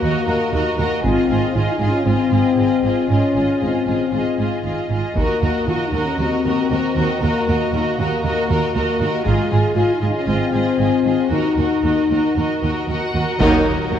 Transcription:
Already playing: A#3
0.02 D#2 F#4 A#4 D#5
0.27 D#2 F#4 A#4 D#5
0.53 D#2 F#4 A#4 D#5
0.77 D#2 F#4 A#4 D#5
1.04 G#1 G#2 C4 F4 G#4 D#5, taiko
1.29 G#1 G#2 F4 G#4 D#5
1.55 G#1 G#2 F4 G#4 D#5
1.73 D#4
1.80 G#1 G#2 F4 G#4 D#5
1.89 C#4
2.06 G#1 G#2 C4 F4 G#4 D#5
2.31 G#1 G#2 F4 G#4 D#5
2.57 G#1 G#2 F4 G#4 D#5
2.83 G#1 G#2 F4 G#4 D#5
3.09 G#1 G#2 C#4 F4 G#4 D#5
3.35 G#1 G#2 F4 G#4 D#5
3.59 G#1 G#2 C4 F4 G#4 D#5
3.86 G#1 G#2 F4 G#4 D#5
4.11 G#1 G#2 F4 G#4 D#5
4.38 G#1 G#2 F4 G#4 D#5
4.63 G#1 G#2 F4 G#4 D#5
4.90 G#1 G#2 F4 G#4 D#5
5.16 D#2 A#3 F#4 A#4 D#5, taiko
5.41 D#2 F#4 A#4 D#5
5.67 D#2 F4 F#4 A#4 D#5
5.87 D#4
5.92 D#2 F#4 A#4 D#5
6.03 C#4
6.18 D#2 C4 F#4 A#4 D#5
6.44 D#2 F#4 A#4 D#5
6.70 D#2 F#4 A#4 D#5
6.96 D#2 F#4 A#4 D#5
7.21 D#2 A#3 F#4 A#4 D#5
7.47 D#2 F#4 A#4 D#5
7.73 D#2 F#4 A#4 D#5
7.98 D#2 F#4 A#4 D#5
8.23 D#2 F#4 A#4 D#5
8.49 D#2 F#4 A#4 D#5
8.74 D#2 F#4 A#4 D#5
8.99 D#2 F#4 A#4 D#5
9.24 G#1 G#2 G#3 F4 G#4 D#5, taiko
9.51 G#1 G#2 F4 G#4 D#5
9.75 G#1 G#2 F4 G#4 D#5
9.95 D#4
10.01 G#1 G#2 F4 G#4 D#5
10.12 C#4
10.27 G#1 G#2 C4 F4 G#4 D#5
10.52 G#1 G#2 F4 G#4 D#5
10.78 G#1 G#2 F4 G#4 D#5
11.05 G#1 G#2 F4 G#4 D#5
11.30 D#2 D#4 F#4 A#4 D#5
11.57 D#2 F#4 A#4 D#5
11.83 D#2 F#4 A#4 D#5
12.09 D#2 F#4 A#4 D#5
12.35 D#2 F#4 A#4 D#5
12.62 D#2 F#4 A#4 D#5
12.86 D#2 F#4 A#4 D#5 F#5
13.13 D#2 F#4 A#4 D#5
13.39 D#2 A#2 D#3 F#3 A#3 D#4 F#4 A#4 D#5, taiko
13.65 D#2 A#3
13.90 D#2 F#3

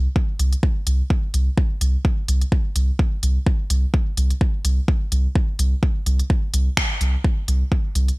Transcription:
0.16 kick
0.39 C2, closed hi-hat
0.53 closed hi-hat
0.63 kick
0.87 C2, closed hi-hat
1.10 kick
1.34 C2, closed hi-hat
1.58 kick
1.81 C2, closed hi-hat
2.05 kick
2.28 C2, closed hi-hat
2.41 closed hi-hat
2.52 kick
2.76 C2, closed hi-hat
2.99 kick
3.23 C2, closed hi-hat
3.46 kick
3.70 C2, closed hi-hat
3.94 kick
4.17 C2, closed hi-hat
4.30 closed hi-hat
4.41 kick
4.65 C2, closed hi-hat
4.88 kick
5.12 C2, closed hi-hat
5.35 kick
5.59 C2, closed hi-hat
5.83 kick
6.06 C2, closed hi-hat
6.19 closed hi-hat
6.30 kick
6.54 C2, closed hi-hat
6.77 finger snap, kick
7.01 C2, closed hi-hat
7.24 kick
7.48 C2, closed hi-hat
7.72 kick
7.95 C2, closed hi-hat
8.08 closed hi-hat

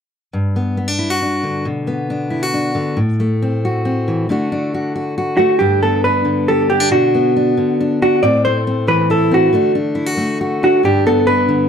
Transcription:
0.33 G2
0.56 B3
0.77 B3
0.88 D4
0.99 E4
1.10 F#4
1.22 D4
1.43 D3
1.65 B2
1.87 B3
2.10 D4
2.30 E4
2.43 F#4
2.54 D4
2.75 D3
2.97 A2
3.20 A3
3.42 C4
3.65 F#4
3.85 C4
4.08 E3
4.29 D3 A3 D4 F#4
4.52 D4
4.74 F#4
4.96 F#4
5.18 F#4
5.37 A3 F#4
5.59 G2 D4 G4
5.83 B3 A4
6.04 D4 B4
6.25 D3
6.48 G4 A4
6.70 B3 G4
6.80 D4
6.91 B2 D4 F#4
7.14 B3
7.36 D4
7.57 D3
7.81 D4
8.02 D4 F#4
8.23 A2 C4 D5
8.45 A3 C5
8.67 C4
8.87 E3 B4
9.10 E4 A4
9.31 C4 F#4
9.53 D3 A3 D4
9.75 D4
9.95 E4
10.06 F#4
10.17 A3
10.41 F#4
10.63 D4 F#4
10.83 G2 D4 G4
11.06 B3 A4
11.27 D4 B4
11.48 D3

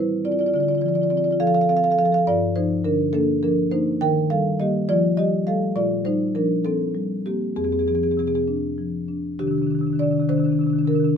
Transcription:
Already playing: A2 G3 C4 E4 C5
0.25 C4 F4 D5
0.32 F4 D5
0.39 F4 D5
0.46 F4 D5
0.54 D3 F4 D5
0.60 F4 D5
0.68 F4 D5
0.75 F4 D5
0.81 F3 D5
0.86 F4 D5
0.94 F4 D5
1.02 F4 D5
1.10 C4 F4 D5
1.17 F4 D5
1.24 F4 D5
1.31 F4 D5
1.40 F3 A4 F5
1.47 A4 F5
1.55 A4 F5
1.61 A4 F5
1.69 C4 A4 F5
1.77 A4 F5
1.83 A4 F5
1.91 A4 F5
1.98 F3 A4 F5
2.05 A4 F5
2.12 A4 F5
2.18 A4
2.27 G2 F4 D5
2.56 F3 D#4 C5
2.84 D3 D4 A#4
3.13 A#3 D4 A4
3.43 F3 D4 A#4
3.71 A#3 D#4 C5
4.01 D#3 A#4 G5
4.30 G3 A4 F5
4.60 G3 A#3 G4 D#5
4.89 F3 F4 D5
5.17 G3 G4 D#5
5.47 G3 A3 A4 F5
5.76 A#2 F4 D5
6.05 G3 D#4 C5
6.35 F3 D4 A#4
6.65 C4 A4
6.95 G3
7.26 A#3 C4 G4
7.56 F2 C4 G#4
7.64 C4 G#4
7.72 C4 G#4
7.79 C4 G#4
7.87 F3 C4 G#4
7.95 C4 G#4
8.03 C4 G#4
8.11 C4 G#4
8.17 C3 C4 G#4
8.27 C4 G#4
8.35 C4 G#4
8.48 D4
8.78 F3
9.08 D4
9.39 C3 D#3 D4 G4
9.47 C3 D#3 D4
9.55 D#3 D4
9.62 C3 D4
9.66 D#3
9.70 C3 D4
9.75 D#3 D4
9.81 C3 D#3
9.87 C3 D4
9.93 D#3 D4
9.99 C3 D#3 D4 D5
10.11 C3 D#3 D4
10.18 C3 D4
10.22 D#3
10.29 C3 D#3 D4 C5
10.37 C3 D#3 D4
10.44 D#3 D4
10.49 C3 D4
10.55 C3 D#3
10.61 D#3 D4
10.67 C3 D4
10.73 C3 D#3
10.79 D#3 D4
10.85 C3 D4 A#4
10.91 C3 D#3
10.95 D4
11.00 D#3
11.05 C3 D4
11.09 D#3

